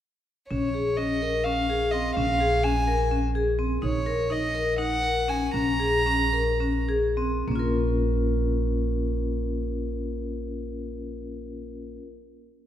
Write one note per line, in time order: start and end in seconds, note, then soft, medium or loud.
0.50 2.13 A#1 medium
0.50 0.69 C#4 medium
0.50 0.99 C#5 medium
0.74 0.92 G#4 medium
0.97 1.16 C#4 medium
0.97 1.45 D#5 medium
1.22 1.40 A#4 medium
1.44 1.64 C#4 medium
1.44 1.93 F5 medium
1.70 1.88 G#4 medium
1.92 2.11 C4 medium
1.92 2.15 D#5 medium
2.15 3.79 A#1 medium
2.15 2.35 C#4 medium
2.15 2.65 F5 medium
2.40 2.58 G#4 medium
2.64 2.82 C#4 medium
2.64 3.17 G#5 medium
2.88 3.06 A#4 medium
3.11 3.29 C#4 medium
3.35 3.53 G#4 medium
3.59 3.77 C4 medium
3.82 5.50 A#1 medium
3.82 4.00 D#4 medium
3.82 4.33 C#5 medium
4.06 4.25 A#4 medium
4.30 4.49 D#4 medium
4.30 4.79 D#5 medium
4.54 4.73 A#4 medium
4.78 4.97 D#4 medium
4.78 5.31 F#5 medium
5.03 5.22 A#4 medium
5.28 5.48 C#4 medium
5.28 5.54 G#5 medium
5.54 7.44 A#1 medium
5.54 5.74 C#4 medium
5.54 6.85 A#5 medium
5.80 6.00 G#4 medium
6.06 6.26 C#4 medium
6.33 6.54 A#4 medium
6.60 6.82 C#4 medium
6.89 7.11 G#4 medium
7.17 7.40 C4 medium
7.48 11.96 A#1 medium
7.48 11.96 A#3 medium
7.48 12.00 C#4 medium
7.55 12.04 F4 medium
7.55 12.08 A#4 medium